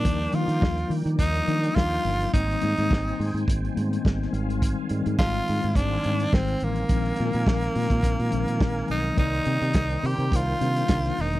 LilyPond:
<<
  \new Staff \with { instrumentName = "Tonewheel organ" } { \time 4/4 \key c \minor \tempo 4 = 105 << { <bes' g''>1 | <c'' aes''>1~ | <c'' aes''>1 | <bes' aes''>1 |
<bes' g''>1 | } \\ { <ees d''>1 | ees'2.~ ees'8 <ees f''>8~ | <ees f''>1~ | <ees f''>1 |
<ees c''>1 | } >> }
  \new Staff \with { instrumentName = "Tenor saxophone" } { \time 4/4 \key c \minor d'8 f'4 r8 ees'4 f'4 | ees'2 r2 | r4 f'4 d'4 c'8 bes8~ | bes2.~ bes8 ees'8 |
ees'4. g'8 f'4. ees'8 | }
  \new Staff \with { instrumentName = "Tine electric piano" } { \clef bass \time 4/4 \key c \minor <f g bes d'>8 <f g bes ees' f'>4. r8 <f ges g bes d'>4. | <ees g bes c'>8 <ees g bes c'>4. r8 <ees g bes ces' c'>4 <ees g aes c'>8~ | <ees g aes c'>8 <ees g aes c'>4. r8 <ees g aes c'>4. | <ees f aes c'>8 <ees f aes c'>4. r8 <ees f aes c'>4. |
<ees g bes d''>4. r4 <ees g bes d'>8 <d ees g bes d'>4 | }
  \new Staff \with { instrumentName = "Fingered electric bass" } { \clef bass \time 4/4 \key c \minor ees,8 ees16 ees16 ees,8 ees16 ees16 ees,8 ees8 ees,8 g,,8 | aes,,8 aes,16 aes,16 aes,,8 aes,16 aes,16 aes,,8 aes,8 aes,,8 aes,,8~ | aes,,8 aes,16 aes,16 aes,,8 aes,16 aes,16 aes,,8 aes,8 aes,,8 a,,8 | bes,,8 bes,16 bes,16 bes,,8 bes,16 bes,16 bes,,16 bes,16 bes,,16 bes,16 bes,,8 ces,8 |
c,8 c16 c16 c,8 c16 c16 c,8 c8 c,8 fes,,8 | }
  \new DrumStaff \with { instrumentName = "Drums" } \drummode { \time 4/4 <hh bd>8 hh16 hh16 <bd sn>16 hh16 hho16 hh16 <hh bd>16 hh16 hh16 hh16 <bd sn>16 <hh sn>16 hh16 hh16 | <hh bd>16 hh16 hh16 hh16 <bd sn>16 hh16 hho16 hh16 <hh bd>16 hh16 hh16 hh16 <bd sn>16 sn16 hh16 hh16 | <hh bd>8 hh16 hh16 <bd sn>16 hh16 hho16 hh16 <hh bd>8 hh16 hh16 <bd sn>16 hh16 hh16 hh16 | <hh bd>16 hh16 hh16 hh16 <bd sn>16 hh16 hho16 <hh bd>16 <hh bd>16 hh16 hh16 hh16 <bd sn>16 sn16 hho16 hh16 |
<cymc bd>16 hh16 hh16 hh16 <hh bd sn>16 hh16 hho16 hh16 <hh bd>8 hh16 hh16 <hh bd sn>16 <hh sn>16 hho16 hh16 | }
>>